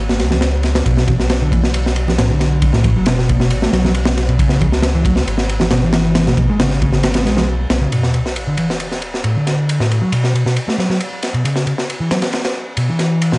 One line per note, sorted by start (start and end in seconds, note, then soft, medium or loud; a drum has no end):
0.00 0.21 G#1 medium
0.09 snare medium
0.09 high conga medium
0.20 0.82 C#2 loud
0.20 snare soft
0.20 ride medium
0.31 snare medium
0.31 low conga medium
0.41 snare medium
0.41 ride medium
0.63 snare soft
0.63 ride soft
0.75 snare loud
0.75 ride medium
0.86 2.86 B1 medium
0.86 1.07 B2 medium
0.86 kick loud
0.86 ride medium
0.97 snare soft
1.08 1.12 B2 medium
1.08 kick medium
1.08 ride medium
1.08 low conga medium
1.20 snare medium
1.30 snare loud
1.30 ride medium
1.42 1.51 D3 medium
1.52 1.59 E3 medium
1.52 kick medium
1.52 ride medium
1.52 high conga medium
1.64 snare soft
1.74 ride medium
1.86 snare soft
1.96 ride medium
2.08 snare soft
2.08 low conga medium
2.18 2.29 A2 loud
2.18 snare loud
2.18 ride medium
2.30 2.73 D3 medium
2.40 snare soft
2.40 ride medium
2.62 kick loud
2.62 ride medium
2.73 2.95 A2 medium
2.73 snare soft
2.73 high conga medium
2.84 3.52 F#1 medium
2.84 kick loud
2.84 ride medium
2.84 low conga medium
2.96 3.06 F#3 loud
3.06 3.28 B2 medium
3.06 snare loud
3.06 ride medium
3.18 snare soft
3.29 3.36 B2 loud
3.29 kick medium
3.29 ride medium
3.29 high conga medium
3.40 3.50 B2 medium
3.40 snare soft
3.50 3.68 A1 medium
3.50 ride medium
3.62 3.72 A3 medium
3.62 snare medium
3.62 high conga medium
3.73 4.62 B1 loud
3.73 3.83 F#3 medium
3.73 snare medium
3.73 ride medium
3.84 3.91 F#3 medium
3.84 snare medium
3.84 low conga medium
3.94 ride medium
4.05 snare loud
4.17 snare medium
4.17 ride medium
4.29 4.38 B2 medium
4.29 ride soft
4.39 4.60 C#3 loud
4.39 kick loud
4.39 ride medium
4.49 snare soft
4.61 5.23 C#2 medium
4.61 4.65 C#3 medium
4.61 kick medium
4.61 ride medium
4.61 low conga medium
4.72 snare soft
4.82 snare loud
4.82 ride medium
4.95 5.04 E3 medium
5.05 5.12 F#3 medium
5.05 kick medium
5.05 ride medium
5.05 high conga medium
5.16 snare soft
5.27 6.34 G#1 loud
5.27 ride medium
5.38 snare soft
5.49 ride medium
5.60 snare soft
5.60 low conga medium
5.71 5.82 B2 loud
5.71 snare loud
5.71 ride medium
5.83 6.26 E3 medium
5.93 snare loud
5.93 ride medium
6.15 snare loud
6.15 ride medium
6.27 6.48 B2 medium
6.27 snare medium
6.27 high conga medium
6.37 7.27 G#1 medium
6.37 kick medium
6.37 ride medium
6.37 low conga medium
6.49 6.59 G#3 loud
6.60 6.81 C#3 loud
6.60 snare loud
6.60 ride medium
6.70 snare soft
6.82 6.89 C#3 loud
6.82 kick medium
6.82 ride medium
6.82 high conga medium
6.93 7.03 C#3 medium
6.93 snare soft
7.03 snare loud
7.03 ride medium
7.14 7.25 B3 medium
7.14 snare medium
7.14 ride medium
7.14 high conga medium
7.25 7.66 B1 medium
7.25 7.36 G#3 medium
7.25 snare soft
7.25 ride medium
7.37 7.44 G#3 medium
7.37 snare medium
7.37 low conga medium
7.70 7.87 B1 medium
7.70 snare loud
7.70 ride medium
7.81 7.91 C#3 medium
7.92 8.13 B2 medium
7.92 ride medium
7.92 sub drop medium
8.03 snare soft
8.14 8.18 B2 medium
8.14 ride medium
8.26 snare soft
8.36 ride medium
8.47 8.57 D3 medium
8.57 8.65 E3 medium
8.57 ride medium
8.70 snare medium
8.80 ride medium
8.91 snare soft
9.02 ride medium
9.14 snare soft
9.24 9.35 A2 medium
9.24 ride medium
9.35 9.79 D3 medium
9.47 snare soft
9.47 ride medium
9.69 ride medium
9.80 10.01 A2 medium
9.80 snare soft
9.91 ride medium
10.01 10.11 F#3 medium
10.12 10.34 B2 medium
10.12 ride medium
10.24 snare soft
10.34 10.41 B2 medium
10.34 ride medium
10.46 10.56 B2 medium
10.46 snare soft
10.56 ride medium
10.68 10.78 A3 medium
10.68 snare soft
10.78 10.89 F#3 medium
10.78 snare soft
10.78 ride medium
10.90 10.97 F#3 medium
10.90 snare soft
11.00 ride medium
11.23 snare soft
11.23 ride medium
11.34 11.44 B2 medium
11.34 ride soft
11.45 11.66 C#3 loud
11.45 ride medium
11.56 snare soft
11.67 11.71 C#3 medium
11.67 ride medium
11.78 snare soft
11.90 ride medium
12.00 12.10 E3 medium
12.11 12.18 F#3 medium
12.11 snare loud
12.11 ride medium
12.22 snare medium
12.22 ride medium
12.33 snare medium
12.33 ride medium
12.45 snare loud
12.45 ride medium
12.77 12.88 B2 medium
12.77 ride medium
12.89 13.32 E3 medium
12.99 snare soft
12.99 ride medium
13.22 ride medium
13.32 13.38 B2 medium
13.32 snare soft